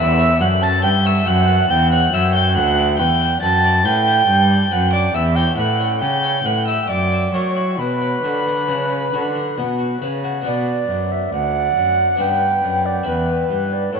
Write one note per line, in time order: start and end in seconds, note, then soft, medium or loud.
0.00 0.37 E2 medium
0.00 0.42 E2 loud
0.00 0.40 E5 loud
0.00 0.43 E6 loud
0.19 0.42 C#5 medium
0.40 0.79 F#2 medium
0.40 0.85 F#2 loud
0.40 0.63 G4 medium
0.40 0.47 F#5 loud
0.40 0.65 F#6 loud
0.61 0.84 C#4 medium
0.61 0.68 A5 loud
0.61 0.84 A6 loud
0.83 1.22 G2 medium
0.83 1.26 G2 loud
0.83 1.06 B4 medium
0.83 0.89 G5 loud
0.83 1.08 G6 loud
1.04 1.27 C#5 medium
1.04 1.27 E5 loud
1.04 1.29 E6 loud
1.26 1.65 F#2 medium
1.26 1.69 F#2 loud
1.26 1.49 G4 medium
1.26 1.69 F#5 loud
1.26 1.72 F#6 loud
1.48 1.69 B4 medium
1.69 2.09 E2 medium
1.69 2.12 E2 loud
1.69 1.90 G5 loud
1.69 1.92 G6 loud
1.91 2.14 C#5 medium
1.91 2.12 F#5 loud
1.91 2.15 F#6 loud
2.12 2.52 F#2 medium
2.12 2.58 F#2 loud
2.12 2.35 F#4 medium
2.12 2.36 E5 loud
2.12 2.35 E6 loud
2.34 2.56 C#4 medium
2.34 2.57 G5 loud
2.34 2.56 G6 loud
2.56 3.00 D2 loud
2.56 2.95 D2 medium
2.56 2.98 F#5 loud
2.56 2.98 F#6 loud
2.78 3.00 D5 medium
2.98 3.42 E2 loud
2.98 3.38 E2 medium
2.98 3.21 B4 medium
2.98 3.41 G5 loud
2.98 3.41 G6 loud
3.21 3.43 D4 medium
3.42 3.87 F#2 medium
3.42 3.81 F#2 medium
3.42 3.65 B4 medium
3.42 3.84 A5 loud
3.42 3.87 A6 loud
3.64 3.86 D5 medium
3.85 4.28 A2 medium
3.85 4.24 A2 medium
3.85 4.08 B4 medium
3.85 4.45 G5 loud
3.85 4.74 G6 loud
4.07 4.28 D4 medium
4.29 4.70 G2 loud
4.29 4.67 G2 medium
4.50 4.72 D5 medium
4.71 5.10 F#2 medium
4.71 5.14 F#2 medium
4.71 4.94 B4 medium
4.71 4.94 F#5 loud
4.71 4.92 F#6 loud
4.93 5.14 D4 medium
4.93 5.16 D5 loud
4.93 5.14 D6 loud
5.14 5.57 E2 loud
5.14 5.54 E2 medium
5.14 5.37 E5 loud
5.14 5.23 E6 loud
5.36 5.59 C#5 medium
5.36 5.59 G5 loud
5.36 5.57 G6 loud
5.58 6.03 A2 medium
5.58 5.97 A2 medium
5.58 5.81 B4 medium
5.58 6.02 F#5 loud
5.58 6.00 F#6 loud
5.80 6.02 C#4 medium
6.01 6.44 C#3 medium
6.01 6.41 C#3 medium
6.01 6.24 G4 medium
6.01 6.46 G5 loud
6.01 6.47 G6 loud
6.23 6.46 C#5 medium
6.45 6.88 A2 medium
6.45 6.85 A2 medium
6.45 6.68 B4 medium
6.45 6.66 F#5 medium
6.45 6.67 F#6 loud
6.67 6.89 G4 medium
6.67 6.91 E5 medium
6.67 6.89 E6 loud
6.89 7.30 F#2 medium
6.89 7.33 F#2 medium
6.89 7.35 D5 medium
6.89 7.33 D6 loud
7.12 7.35 E5 medium
7.34 7.80 F#3 medium
7.34 7.75 F#3 medium
7.34 7.58 A#4 medium
7.34 7.79 C#5 medium
7.34 7.81 C#6 loud
7.56 7.79 E4 medium
7.79 8.23 B2 medium
7.79 8.20 B2 medium
7.79 9.98 B4 medium
7.79 10.02 B5 loud
8.02 8.25 B4 medium
8.23 8.70 D3 medium
8.23 8.64 D3 medium
8.23 8.47 F#4 medium
8.47 8.70 B3 medium
8.68 9.13 C#3 medium
8.68 9.09 C#3 medium
8.68 8.91 D4 medium
8.90 9.13 B4 medium
9.13 9.59 D3 medium
9.13 9.53 D3 medium
9.13 9.36 F#4 medium
9.35 9.58 D4 soft
9.58 10.02 B2 medium
9.58 9.98 B2 medium
9.58 9.81 B3 medium
9.79 10.02 F#4 medium
10.02 10.42 C#3 medium
10.02 10.45 C#3 medium
10.02 10.25 B4 medium
10.24 10.45 F#4 medium
10.41 12.14 B3 medium
10.41 12.14 D4 soft
10.41 12.15 B4 medium
10.46 10.85 B2 medium
10.46 10.86 B2 medium
10.46 11.13 D5 loud
10.89 11.29 F#2 medium
10.89 11.32 F#2 medium
11.12 11.33 E5 medium
11.33 11.72 D2 medium
11.33 11.76 D2 medium
11.33 12.22 D5 medium
11.33 12.19 F#5 loud
11.76 12.16 F#2 medium
11.76 12.19 F#2 medium
12.16 12.59 B3 medium
12.16 12.60 D4 soft
12.16 13.03 B4 soft
12.20 12.59 G2 medium
12.20 12.62 G2 medium
12.20 13.06 B4 medium
12.20 12.87 G5 loud
12.63 13.02 F#2 medium
12.63 13.06 F#2 medium
12.86 13.06 D5 medium
13.03 13.46 E2 medium
13.03 13.49 E2 medium
13.03 14.00 E4 soft
13.03 14.00 B4 medium
13.03 13.94 B4 medium
13.03 13.75 B4 medium
13.50 13.89 G2 medium
13.50 13.93 G2 medium
13.73 13.93 D5 medium
13.93 14.00 A2 medium
13.93 14.00 A4 medium
13.93 14.00 C#5 medium